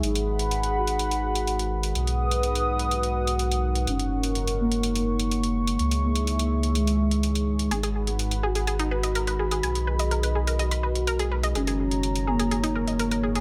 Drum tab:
HH |xx-xxx-xxx-xxx-x|xx-xxx-xxx-xxx-x|xx-xxx-xxx-xxx-x|xx-xxx-xxx-xxx-x|

HH |xx-xxx-xxx-xxx-x|xx-xxx-xxx-xxx-x|xx-xxx-xxx-xxx-x|